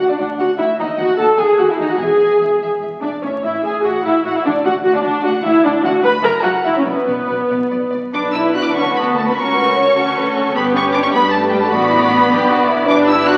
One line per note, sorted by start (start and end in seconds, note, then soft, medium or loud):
0.08 0.19 D4 medium
0.08 0.12 D5 medium
0.18 0.27 D2 medium
0.18 0.28 D2 medium
0.18 0.28 D4 medium
0.18 0.26 D5 medium
0.18 0.28 F#5 medium
0.38 0.46 D2 medium
0.38 0.47 D2 medium
0.38 0.47 F#4 medium
0.38 0.58 F#5 medium
0.38 0.48 F#5 medium
0.58 0.67 D2 medium
0.58 0.67 E4 medium
0.58 0.78 E5 medium
0.58 0.68 F#5 medium
0.79 0.86 D#2 medium
0.79 0.87 D#2 medium
0.79 0.87 D#4 medium
0.79 0.99 D#5 medium
0.79 0.88 F#5 medium
0.98 1.06 D#2 medium
0.98 1.18 F#4 medium
0.98 1.06 F#5 medium
0.98 1.18 F#5 medium
1.18 1.26 D#2 medium
1.18 1.38 A4 loud
1.18 1.27 F#5 medium
1.18 1.27 A5 medium
1.38 1.46 D#2 medium
1.38 1.59 G#4 loud
1.38 1.47 F#5 medium
1.38 1.46 G#5 medium
1.57 1.65 D#2 medium
1.57 1.66 D#2 medium
1.57 1.69 F#4 medium
1.57 1.63 F#5 medium
1.57 1.68 F#5 soft
1.69 1.79 E4 medium
1.69 1.73 E5 medium
1.78 1.86 D#2 medium
1.78 1.89 D#4 medium
1.78 1.89 D#5 medium
1.78 1.89 F#5 medium
1.90 1.94 F#4 medium
1.90 2.00 F#5 medium
1.98 2.07 E1 medium
1.98 2.07 E2 medium
1.98 2.59 G#4 medium
1.98 2.09 E5 medium
1.98 2.61 G#5 medium
2.19 2.27 E1 medium
2.19 2.27 E2 medium
2.19 2.29 E5 medium
2.39 2.48 E1 medium
2.39 2.47 E2 soft
2.39 2.50 E5 medium
2.60 2.68 E1 medium
2.60 2.68 E2 medium
2.60 2.69 E5 medium
2.81 2.89 E1 soft
2.81 2.89 E2 soft
2.81 2.90 E5 soft
3.02 3.10 E1 soft
3.02 3.11 E2 soft
3.02 3.10 D4 medium
3.02 3.22 D5 medium
3.02 3.11 E5 soft
3.23 3.32 A1 medium
3.23 3.32 A2 medium
3.23 3.31 C#4 medium
3.23 3.44 C#5 medium
3.23 3.34 E5 medium
3.44 3.52 A1 medium
3.44 3.52 A2 medium
3.44 3.64 E4 medium
3.44 3.65 E5 medium
3.44 3.53 E5 soft
3.64 3.73 A1 medium
3.64 3.72 A2 medium
3.64 3.84 G#4 medium
3.64 3.74 E5 medium
3.64 3.73 G#5 medium
3.84 3.93 A1 medium
3.84 3.92 A2 medium
3.84 4.05 F#4 medium
3.84 3.92 E5 medium
3.84 4.05 F#5 medium
4.04 4.13 A1 medium
4.04 4.13 A2 medium
4.04 4.25 E4 medium
4.04 4.13 E5 soft
4.04 4.26 E5 medium
4.25 4.34 A1 medium
4.25 4.33 A2 medium
4.25 4.35 F#4 medium
4.25 4.34 E5 medium
4.25 4.35 F#5 medium
4.36 4.40 E4 medium
4.36 4.46 E5 medium
4.45 4.54 D2 medium
4.45 4.53 D4 medium
4.45 4.65 D5 medium
4.45 4.53 F#5 medium
4.65 4.73 D2 medium
4.65 4.73 F#4 loud
4.65 4.73 F#5 medium
4.65 4.74 F#5 medium
4.84 4.92 D2 medium
4.84 4.93 D2 medium
4.84 4.94 F#4 loud
4.84 4.95 F#5 medium
4.84 4.94 F#5 medium
4.95 5.02 D4 medium
4.95 5.04 D5 medium
5.04 5.12 D2 medium
5.04 5.13 D2 medium
5.04 5.23 D4 loud
5.04 5.24 D5 medium
5.04 5.13 F#5 medium
5.23 5.32 D2 medium
5.23 5.33 D2 medium
5.23 5.31 F#4 loud
5.23 5.44 F#5 medium
5.28 5.35 F#5 medium
5.43 5.52 D2 medium
5.43 5.63 E4 loud
5.43 5.64 E5 medium
5.43 5.54 F#5 medium
5.63 5.71 D2 medium
5.63 5.72 D2 medium
5.63 5.83 D4 medium
5.63 5.72 D5 medium
5.63 5.73 F#5 medium
5.83 5.91 D2 medium
5.83 6.03 F#4 loud
5.83 5.92 F#5 medium
5.83 5.93 F#5 medium
6.02 6.11 D2 medium
6.02 6.11 B4 loud
6.02 6.10 F#5 medium
6.02 6.24 B5 loud
6.23 6.31 F#1 medium
6.23 6.32 F#2 medium
6.23 6.31 A#4 loud
6.23 6.31 E5 medium
6.23 6.44 A#5 loud
6.43 6.52 F#1 medium
6.43 6.52 F#2 medium
6.43 6.51 F#4 loud
6.43 6.52 E5 medium
6.43 6.65 F#5 medium
6.64 6.72 F#1 medium
6.64 6.73 F#2 medium
6.64 6.76 E4 medium
6.64 6.72 E5 medium
6.64 6.76 E5 medium
6.76 6.81 C#4 medium
6.76 6.80 C#5 medium
6.85 6.94 B1 medium
6.85 6.94 B2 medium
6.85 7.91 B3 medium
6.85 7.91 B4 medium
6.85 6.93 D5 medium
7.07 7.15 B1 medium
7.07 7.16 B2 medium
7.07 7.15 D5 medium
7.28 7.37 B1 medium
7.28 7.37 B2 medium
7.28 7.36 D5 medium
7.50 7.58 B1 medium
7.50 7.58 B2 medium
7.50 7.58 D5 medium
7.71 7.80 B1 medium
7.71 7.80 B2 medium
7.71 7.79 D5 medium
7.91 8.01 B1 medium
7.91 8.01 B2 medium
7.91 7.99 D5 medium
8.14 8.72 B1 medium
8.14 8.33 D4 medium
8.14 8.72 D4 medium
8.14 9.32 B4 medium
8.14 8.72 B4 medium
8.14 8.22 D6 medium
8.33 8.55 E4 medium
8.33 8.41 E6 loud
8.55 8.66 F#4 medium
8.55 8.65 F#6 loud
8.64 8.76 D4 medium
8.64 8.75 D6 loud
8.75 9.36 D2 medium
8.75 8.85 C#4 medium
8.75 9.35 F#4 medium
8.75 9.36 A4 medium
8.75 8.95 C#6 loud
8.96 9.16 B3 medium
8.96 9.04 B5 medium
9.16 9.26 A3 medium
9.16 9.27 A5 medium
9.28 9.31 B3 medium
9.28 9.37 B5 medium
9.35 9.95 C#2 medium
9.35 10.54 C#4 medium
9.35 9.95 F#4 medium
9.35 9.55 A#4 medium
9.35 9.95 A#4 medium
9.35 10.55 C#6 loud
9.57 9.77 B4 medium
9.78 9.97 C#5 medium
9.96 10.55 D2 medium
9.96 10.04 F#4 medium
9.96 10.55 F#4 medium
9.96 10.56 A4 medium
10.16 10.24 B4 medium
10.35 10.55 A4 medium
10.56 11.13 G1 loud
10.56 10.75 B3 loud
10.56 11.72 G4 loud
10.56 11.14 G4 medium
10.56 11.13 B4 medium
10.56 10.64 B5 loud
10.76 10.95 C#4 loud
10.76 10.83 C#6 loud
10.93 10.99 D4 medium
10.93 10.97 D6 loud
11.03 11.09 C#4 loud
11.03 11.07 C#6 loud
11.12 11.71 G2 medium
11.12 11.22 B3 loud
11.12 11.73 D4 medium
11.12 11.71 B4 medium
11.12 11.32 B5 loud
11.32 11.53 A3 medium
11.32 11.52 A5 loud
11.52 11.62 G3 loud
11.52 11.62 G5 loud
11.61 11.72 A3 medium
11.61 11.71 A5 loud
11.71 12.29 A1 loud
11.71 12.89 B3 loud
11.71 11.91 F#4 loud
11.71 12.29 F#4 medium
11.71 12.30 D5 medium
11.71 12.86 B5 loud
11.91 12.11 E4 medium
12.10 12.89 D4 loud
12.31 12.89 B1 medium
12.31 12.50 G4 loud
12.31 12.88 D5 medium
12.51 12.70 F#4 medium
12.70 12.90 E4 medium
12.88 13.38 G1 loud
12.88 13.07 D4 loud
12.88 13.38 D4 loud
12.88 13.38 G4 loud
12.88 13.38 B4 medium
12.88 12.97 D6 loud
13.08 13.28 E4 loud
13.08 13.27 E6 loud
13.27 13.37 F#4 loud
13.27 13.37 F#6 loud